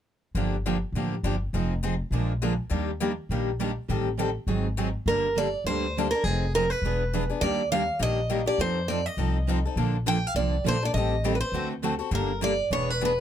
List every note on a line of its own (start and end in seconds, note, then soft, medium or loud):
0.35 0.82 G1 medium
0.35 0.54 D3 medium
0.35 0.54 F3 medium
0.35 0.54 A#3 medium
0.35 0.55 D4 medium
0.35 0.55 G4 medium
0.66 0.76 D3 medium
0.66 0.76 F3 medium
0.66 0.76 A#3 medium
0.66 0.76 D4 medium
0.66 0.76 G4 medium
0.92 1.18 A1 medium
0.92 1.14 D3 soft
0.92 1.14 F3 medium
0.92 1.14 A#3 medium
0.92 1.14 D4 medium
0.97 1.15 G4 medium
1.23 1.49 G1 medium
1.23 1.34 D3 medium
1.23 1.34 F3 medium
1.23 1.34 A#3 medium
1.23 1.34 D4 medium
1.23 1.35 G4 medium
1.53 2.00 F1 medium
1.53 1.72 F3 medium
1.53 1.73 C4 medium
1.53 1.73 D#4 medium
1.53 1.73 G#4 medium
1.83 1.93 F3 medium
1.83 1.93 C4 medium
1.83 1.93 D#4 medium
1.83 1.94 G#4 medium
2.11 2.58 A#1 medium
2.11 2.31 D3 medium
2.11 2.31 F3 medium
2.11 2.32 G#3 medium
2.11 2.31 A#3 medium
2.11 2.31 D4 medium
2.11 2.32 F4 medium
2.11 2.32 G#4 medium
2.11 2.32 A#4 medium
2.42 2.52 D3 medium
2.42 2.52 F3 medium
2.42 2.53 G#3 medium
2.42 2.52 A#3 medium
2.42 2.52 D4 medium
2.42 2.53 F4 medium
2.42 2.53 G#4 medium
2.42 2.53 A#4 medium
2.70 3.18 D#2 medium
2.70 2.89 D#3 medium
2.70 2.90 G3 medium
2.70 2.89 A#3 medium
2.70 2.90 D4 medium
2.70 2.90 G4 medium
3.00 3.11 D#3 medium
3.00 3.11 G3 medium
3.00 3.11 A#3 medium
3.00 3.11 D4 medium
3.00 3.12 G4 medium
3.29 3.77 A#1 medium
3.29 3.49 D#3 medium
3.29 3.50 G3 medium
3.29 3.49 A#3 medium
3.29 3.50 D4 medium
3.29 3.50 G4 medium
3.60 3.70 D#3 medium
3.60 3.70 G3 medium
3.60 3.70 A#3 medium
3.60 3.70 D4 medium
3.60 3.71 G4 medium
3.89 4.36 A1 medium
3.89 4.08 D#3 medium
3.89 4.08 G3 medium
3.89 4.08 C4 medium
3.89 4.08 G4 medium
3.89 4.09 A4 medium
4.19 4.29 D#3 medium
4.19 4.29 G3 medium
4.19 4.29 C4 medium
4.19 4.29 G4 medium
4.19 4.29 A4 medium
4.47 4.94 G#1 medium
4.47 4.66 D#3 medium
4.47 4.66 F#3 soft
4.47 4.66 C4 medium
4.47 4.67 D#4 soft
4.47 4.67 G#4 medium
4.77 4.87 D#3 medium
4.77 4.87 F#3 medium
4.77 4.88 C4 medium
4.77 4.88 D#4 medium
4.77 4.88 G#4 medium
5.06 5.53 G1 medium
5.06 5.26 D3 medium
5.06 5.27 G3 medium
5.06 5.27 A#3 medium
5.06 5.27 D4 medium
5.06 5.27 A4 medium
5.06 5.37 A#4 medium
5.38 5.47 D3 medium
5.38 5.47 G3 medium
5.38 5.47 A#3 medium
5.38 5.47 D4 medium
5.38 5.47 A4 medium
5.38 5.64 D5 medium
5.64 6.12 D2 medium
5.64 5.85 D3 medium
5.64 5.85 G3 medium
5.64 5.85 A#3 medium
5.64 5.85 D4 medium
5.64 6.13 C5 medium
5.68 5.85 A4 medium
5.98 6.07 D3 medium
5.98 6.07 G3 medium
5.98 6.07 A#3 medium
5.98 6.07 D4 medium
5.98 6.07 A4 medium
6.11 6.25 D4 soft
6.11 6.24 A4 medium
6.11 6.24 A#4 medium
6.15 6.25 A#3 soft
6.24 6.71 F1 medium
6.24 6.44 F3 medium
6.24 6.44 C4 medium
6.24 6.44 D#4 medium
6.24 6.53 G#4 medium
6.24 6.44 G#4 medium
6.54 6.64 F3 medium
6.54 6.65 C4 medium
6.54 6.65 D#4 medium
6.54 6.65 G#4 medium
6.54 6.70 A#4 medium
6.70 7.29 B4 medium
6.82 7.29 E1 medium
6.82 7.02 E3 medium
6.82 7.03 D4 medium
6.86 7.03 B3 medium
6.86 7.03 G#4 medium
6.86 7.03 B4 medium
7.13 7.23 E3 medium
7.13 7.23 B3 medium
7.13 7.23 D4 medium
7.13 7.24 G#4 medium
7.13 7.24 B4 medium
7.29 7.42 B3 soft
7.29 7.42 D4 soft
7.29 7.41 G#4 soft
7.41 7.88 D#2 medium
7.41 7.61 D#3 medium
7.41 7.61 G3 medium
7.41 7.61 A#3 medium
7.41 7.61 D4 medium
7.41 7.61 G4 medium
7.41 7.71 D5 medium
7.72 7.82 D#3 medium
7.72 7.82 G3 medium
7.72 7.82 A#3 medium
7.72 7.82 D4 medium
7.72 7.82 G4 medium
7.72 7.99 F5 medium
7.99 8.47 A#1 medium
7.99 8.19 D#3 medium
7.99 8.19 G3 medium
7.99 8.18 A#3 medium
7.99 8.19 D4 medium
7.99 8.19 G4 medium
7.99 8.44 D#5 medium
8.30 8.40 D#3 medium
8.30 8.40 G3 medium
8.30 8.40 A#3 medium
8.30 8.40 D4 medium
8.30 8.40 G4 medium
8.46 8.59 A#3 soft
8.46 8.59 D4 soft
8.46 8.58 G4 soft
8.46 8.60 D5 medium
8.58 9.06 F2 medium
8.58 8.78 F3 medium
8.58 8.78 C4 medium
8.58 8.78 D#4 medium
8.58 8.78 A4 medium
8.58 8.90 C5 medium
8.88 8.99 F3 medium
8.88 8.99 C4 medium
8.88 8.99 D#4 medium
8.88 9.00 A4 medium
8.88 9.06 D5 medium
9.06 9.64 D#5 medium
9.17 9.64 C2 medium
9.17 9.36 F3 medium
9.17 9.37 C4 medium
9.17 9.37 D#4 medium
9.17 9.37 A4 medium
9.48 9.58 F3 medium
9.48 9.58 C4 medium
9.48 9.58 D#4 medium
9.48 9.59 A4 medium
9.65 9.77 C4 soft
9.65 9.77 D#4 soft
9.65 9.76 A4 soft
9.76 10.23 A#1 medium
9.76 9.96 D3 medium
9.76 9.96 F3 medium
9.76 9.96 A#3 medium
9.76 9.96 D4 medium
9.76 9.96 A4 medium
10.06 10.16 D3 medium
10.06 10.17 F3 medium
10.06 10.17 A#3 medium
10.06 10.17 D4 medium
10.06 10.17 A4 medium
10.06 10.27 G5 medium
10.27 10.35 F5 medium
10.35 10.60 C2 medium
10.35 10.54 D3 medium
10.35 10.55 F3 medium
10.35 10.55 A#3 medium
10.35 10.55 D4 medium
10.35 10.55 A4 medium
10.35 10.66 D5 medium
10.65 10.90 A#1 medium
10.65 10.76 D3 medium
10.65 10.76 F3 medium
10.65 10.76 A#3 medium
10.65 10.76 D4 medium
10.65 10.76 A4 medium
10.65 10.85 C5 medium
10.83 10.95 A#3 soft
10.83 10.94 D4 soft
10.83 10.94 A4 soft
10.83 10.93 D5 medium
10.94 11.41 A1 medium
10.94 11.14 D#3 medium
10.94 11.14 G3 medium
10.94 11.15 C4 medium
10.94 11.15 G4 medium
10.94 11.15 A4 medium
10.94 11.33 D#5 medium
11.24 11.34 D#3 medium
11.24 11.34 G3 medium
11.24 11.35 C4 medium
11.24 11.34 G4 medium
11.24 11.35 A4 medium
11.35 11.40 B4 medium
11.41 11.68 C5 medium
11.52 11.99 D2 medium
11.52 11.72 D3 medium
11.52 11.72 A3 medium
11.52 11.73 C4 medium
11.52 11.72 F#4 medium
11.52 11.73 A4 medium
11.83 11.93 D3 medium
11.83 11.93 A3 medium
11.83 11.94 C4 medium
11.83 11.94 F#4 medium
11.83 11.94 A4 medium
11.99 12.11 C4 soft
11.99 12.11 F#4 medium
11.99 12.11 A4 soft
12.11 12.59 G1 medium
12.11 12.30 D3 medium
12.11 12.30 G3 medium
12.11 12.31 A#3 medium
12.11 12.30 D4 medium
12.11 12.31 A4 medium
12.11 12.43 A#4 medium
12.41 12.51 D3 medium
12.41 12.52 G3 medium
12.41 12.52 A#3 medium
12.41 12.52 D4 medium
12.41 12.52 A4 medium
12.41 12.72 D5 medium
12.71 13.18 E1 medium
12.71 12.90 E3 medium
12.71 12.90 B3 medium
12.71 12.90 D4 medium
12.71 12.91 G#4 medium
12.71 12.90 B4 medium
12.71 12.90 C#5 medium
12.90 13.02 B4 medium
13.01 13.11 E3 medium
13.01 13.11 B3 medium
13.01 13.11 D4 medium
13.01 13.12 G#4 medium
13.01 13.12 B4 medium
13.01 13.20 B4 medium